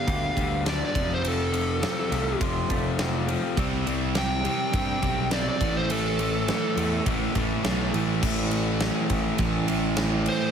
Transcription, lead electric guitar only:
0.00 0.63 F5 medium
0.69 0.82 D5 medium
0.85 1.11 D5 medium
1.14 1.28 C5 medium
1.28 2.39 A4 loud
4.18 5.30 G5 loud
5.33 5.47 D5 medium
5.49 5.76 D5 medium
5.77 5.91 C5 medium
5.91 7.04 A4 loud
10.29 10.51 C5 medium

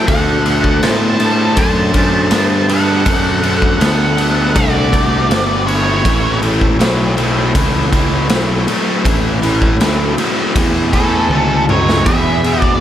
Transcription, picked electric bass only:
0.08 0.81 D2 medium
0.83 1.55 A2 medium
1.57 2.30 F#2 medium
2.32 3.05 G2 medium
3.06 3.79 F#2 medium
3.81 4.54 D2 medium
4.56 5.29 C2 medium
5.30 6.03 G1 medium
6.05 6.78 A1 medium
6.80 7.53 B1 medium
7.55 8.28 C#2 medium
8.30 8.65 B1 medium
8.69 muted picked electric bass stroke soft
9.05 9.78 A1 medium
9.80 10.15 D2 medium
10.17 muted picked electric bass stroke soft
10.55 11.28 E2 medium
11.30 12.03 C#2 medium
12.06 12.78 E2 medium

